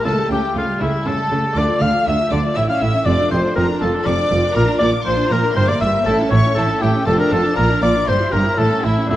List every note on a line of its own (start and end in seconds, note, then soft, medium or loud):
0.02 0.13 C#2 medium
0.02 0.13 C#3 medium
0.02 0.28 C#3 medium
0.02 0.17 A3 medium
0.02 1.51 E4 medium
0.02 0.30 A4 medium
0.02 0.30 A5 loud
0.17 0.30 G3 medium
0.30 0.38 C#2 medium
0.30 0.53 C#3 medium
0.30 0.39 C#3 medium
0.30 0.43 A3 medium
0.30 0.55 G4 medium
0.30 0.56 G4 medium
0.30 0.55 G5 loud
0.42 0.55 G3 medium
0.54 0.63 C#2 medium
0.54 0.78 C#3 medium
0.54 0.64 C#3 medium
0.54 0.67 A3 medium
0.54 0.62 F4 medium
0.54 0.80 F5 loud
0.58 0.81 F4 medium
0.68 0.80 G3 medium
0.80 0.89 C#2 medium
0.80 1.03 C#3 medium
0.80 0.89 C#3 medium
0.80 0.93 A3 medium
0.80 0.88 E4 medium
0.80 1.08 E4 medium
0.80 1.05 E5 loud
0.94 1.06 G3 medium
1.05 1.14 C#2 medium
1.05 1.28 C#3 medium
1.05 1.15 C#3 medium
1.05 1.17 A3 medium
1.05 1.54 A4 loud
1.05 1.59 A4 loud
1.05 1.56 A5 loud
1.19 1.31 G3 medium
1.30 1.38 C#2 medium
1.30 1.40 C#3 medium
1.30 1.54 C#3 medium
1.30 1.43 A3 medium
1.43 1.56 G3 medium
1.52 1.63 D2 medium
1.52 2.51 A3 medium
1.52 1.67 A3 medium
1.52 2.52 D4 medium
1.52 2.53 F4 medium
1.52 1.81 D5 medium
1.52 1.63 D6 loud
1.56 1.78 D3 medium
1.56 1.64 D3 medium
1.56 1.83 D5 loud
1.68 1.81 F3 medium
1.80 1.88 D2 medium
1.80 1.89 D3 medium
1.80 2.04 D3 medium
1.80 1.94 A3 medium
1.80 2.06 F5 loud
1.80 2.07 F5 loud
1.80 2.05 F6 loud
1.92 2.05 F3 medium
2.05 2.14 D2 medium
2.05 2.15 D3 medium
2.05 2.29 D3 medium
2.05 2.17 A3 medium
2.05 2.31 E5 loud
2.05 2.32 E5 loud
2.05 2.31 E6 loud
2.17 2.31 F3 medium
2.30 2.39 D2 medium
2.30 2.40 D3 medium
2.30 2.54 D3 medium
2.30 2.43 A3 medium
2.30 2.56 D5 loud
2.30 2.58 D5 medium
2.30 2.39 D6 loud
2.44 2.56 F3 medium
2.53 3.01 A3 medium
2.53 3.03 C#4 medium
2.53 3.04 E4 medium
2.53 2.68 E4 medium
2.53 2.68 E5 loud
2.53 2.61 E6 loud
2.57 2.65 A1 medium
2.57 2.79 A2 medium
2.57 2.65 A2 medium
2.57 2.69 E5 loud
2.69 2.81 C#4 medium
2.69 2.81 F5 medium
2.69 2.83 F5 medium
2.69 2.81 F6 loud
2.81 2.89 A1 medium
2.81 3.04 A2 medium
2.81 2.90 A2 medium
2.81 2.94 E4 medium
2.81 3.06 E5 loud
2.81 3.07 E5 medium
2.81 3.06 E6 loud
2.94 3.06 C#4 medium
3.03 3.14 F1 medium
3.03 4.50 A3 medium
3.03 4.51 D4 medium
3.03 4.52 F4 medium
3.03 3.18 F4 medium
3.03 3.30 D5 loud
3.03 3.31 D5 loud
3.07 3.15 F2 medium
3.07 3.29 F2 medium
3.07 3.31 D6 loud
3.19 3.31 D4 medium
3.31 3.40 F1 medium
3.31 3.54 F2 medium
3.31 3.40 F2 medium
3.31 3.44 F4 medium
3.31 3.55 C5 medium
3.31 3.56 C5 medium
3.31 3.39 C6 loud
3.44 3.57 D4 medium
3.56 3.65 F1 medium
3.56 3.79 F2 medium
3.56 3.65 F2 medium
3.56 3.68 F4 medium
3.56 3.67 A#4 medium
3.56 3.82 A#4 loud
3.56 3.81 A#5 loud
3.69 3.82 D4 medium
3.81 3.89 F1 medium
3.81 4.04 F2 medium
3.81 3.90 F2 medium
3.81 3.94 F4 medium
3.81 4.05 A4 medium
3.81 4.07 A4 medium
3.81 3.90 A5 loud
3.94 4.07 D4 medium
4.05 4.14 F1 medium
4.05 4.29 F2 medium
4.05 4.15 F2 medium
4.05 4.18 F4 medium
4.05 4.55 D5 loud
4.05 4.56 D5 loud
4.05 4.55 D6 loud
4.18 4.31 D4 medium
4.31 4.40 F1 medium
4.31 4.53 F2 medium
4.31 4.39 F2 medium
4.31 4.44 F4 medium
4.44 4.56 D4 medium
4.51 5.49 A#3 medium
4.51 5.50 D4 medium
4.51 5.51 F4 medium
4.55 4.65 A#1 loud
4.55 4.78 A#2 medium
4.55 4.64 A#2 medium
4.55 4.67 F4 medium
4.55 4.80 A#4 loud
4.55 4.68 A#4 loud
4.55 4.81 A#5 loud
4.67 4.80 D4 medium
4.79 4.89 A#1 loud
4.79 5.03 A#2 medium
4.79 4.89 A#2 medium
4.79 4.93 F4 medium
4.79 4.91 D5 loud
4.79 4.89 D5 loud
4.79 5.05 D6 loud
4.92 5.05 D4 medium
5.04 5.14 A#1 medium
5.04 5.28 A#2 medium
5.04 5.14 A#2 medium
5.04 5.17 F4 medium
5.04 5.30 C5 loud
5.04 5.34 C5 loud
5.04 5.31 C6 loud
5.17 5.31 D4 medium
5.30 5.39 A#1 medium
5.30 5.53 A#2 medium
5.30 5.39 A#2 medium
5.30 5.43 F4 medium
5.30 5.56 A#4 loud
5.30 5.55 A#5 loud
5.43 5.56 D4 medium
5.50 6.02 A#3 medium
5.50 6.02 E4 medium
5.55 5.65 G1 medium
5.55 5.78 G2 medium
5.55 5.64 G2 loud
5.55 5.67 G3 medium
5.55 5.70 C5 loud
5.55 5.69 C5 loud
5.55 5.68 C6 loud
5.67 5.81 A#3 medium
5.67 5.81 D5 loud
5.67 5.80 D5 medium
5.67 5.81 D6 loud
5.81 5.89 G1 medium
5.81 5.89 G2 medium
5.81 6.04 G2 medium
5.81 5.94 G3 medium
5.81 6.05 E5 loud
5.81 6.06 E5 loud
5.81 5.89 E6 loud
5.94 6.06 A#3 medium
6.01 7.00 A3 medium
6.01 7.01 C#4 medium
6.01 7.03 E4 medium
6.05 6.14 A1 medium
6.05 6.29 A2 medium
6.05 6.14 A2 loud
6.05 6.18 E4 medium
6.05 6.17 A4 loud
6.05 6.31 A4 loud
6.05 6.30 A5 loud
6.19 6.32 C#4 medium
6.30 6.40 A1 medium
6.30 6.53 A2 medium
6.30 6.40 A2 loud
6.30 6.44 E4 medium
6.30 6.56 C#5 loud
6.30 6.54 C#5 loud
6.30 6.56 C#6 loud
6.44 6.56 C#4 medium
6.55 6.64 A1 medium
6.55 6.78 A2 medium
6.55 6.64 A2 medium
6.55 6.68 E4 medium
6.55 6.83 A4 loud
6.55 6.81 A4 loud
6.55 6.82 A5 loud
6.69 6.81 C#4 medium
6.81 6.89 A1 medium
6.81 7.04 A2 medium
6.81 6.90 A2 medium
6.81 6.94 E4 medium
6.81 7.06 G4 loud
6.81 6.90 G4 medium
6.81 7.06 G5 loud
6.93 7.06 C#4 medium
7.01 7.52 A3 medium
7.01 7.53 F4 medium
7.05 7.14 F1 loud
7.05 7.29 F2 medium
7.05 7.15 F2 medium
7.05 7.18 F4 medium
7.05 7.18 A4 loud
7.05 7.19 A4 loud
7.05 7.11 A5 loud
7.18 7.31 D4 medium
7.18 7.31 A#4 medium
7.18 7.32 A#4 medium
7.18 7.32 A#5 loud
7.31 7.39 F1 medium
7.31 7.54 F2 medium
7.31 7.40 F2 medium
7.31 7.44 F4 medium
7.31 7.57 A4 loud
7.31 7.56 A4 loud
7.31 7.57 A5 loud
7.44 7.57 D4 medium
7.52 7.79 A#2 medium
7.52 8.03 D4 medium
7.52 8.03 F4 medium
7.52 7.68 F4 medium
7.52 7.81 A#4 loud
7.56 7.64 A#1 loud
7.56 7.66 A#2 medium
7.56 7.82 A#5 loud
7.69 7.82 D4 medium
7.82 7.90 A#1 medium
7.82 8.05 A#2 medium
7.82 7.91 A#2 medium
7.82 7.95 F4 medium
7.82 7.90 D5 loud
7.82 8.09 D5 loud
7.82 8.07 D6 loud
7.94 8.07 D4 medium
8.03 8.15 G1 medium
8.03 8.29 G2 medium
8.03 8.54 E4 medium
8.03 8.15 C5 loud
8.03 8.32 C6 loud
8.07 8.16 G2 medium
8.07 8.19 G4 medium
8.07 8.34 C5 loud
8.20 8.33 E4 medium
8.32 8.41 G1 medium
8.32 8.55 G2 medium
8.32 8.42 G2 medium
8.32 8.45 G4 medium
8.32 8.40 A#4 medium
8.32 8.59 A#4 loud
8.32 8.57 A#5 loud
8.45 8.56 E4 medium
8.54 8.66 A1 medium
8.54 8.80 A2 medium
8.54 9.05 C#4 medium
8.54 9.06 E4 medium
8.54 8.69 E4 medium
8.54 8.82 A4 loud
8.54 8.86 A4 loud
8.58 8.66 A2 medium
8.58 8.83 A5 loud
8.71 8.83 C#4 medium
8.83 8.92 A1 medium
8.83 9.06 A2 medium
8.83 8.92 A2 medium
8.83 8.96 E4 medium
8.83 9.08 E4 medium
8.83 9.09 E4 medium
8.83 9.08 E5 loud
8.96 9.09 C#4 medium
9.05 9.16 D3 medium
9.05 9.16 F3 medium
9.05 9.16 A3 medium
9.05 9.16 D4 medium
9.05 9.16 E5 loud
9.09 9.16 D2 medium
9.09 9.16 D3 medium
9.09 9.16 E4 loud